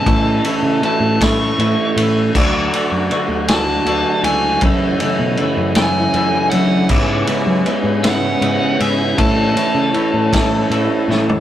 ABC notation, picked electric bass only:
X:1
M:6/8
L:1/16
Q:3/8=53
K:A
V:1 name="Picked electric bass" clef=bass
A,,2 z C, z A,,3 A,, z A,,2 | D,,2 z F,, z D,,3 D,, z C,,2 | F,,2 z B,, z F,,3 F,, z F,2 | G,,2 z F, z G,,3 G,, z G,,2 |
A,,2 z C, z A,,3 A,, z A,,2 |]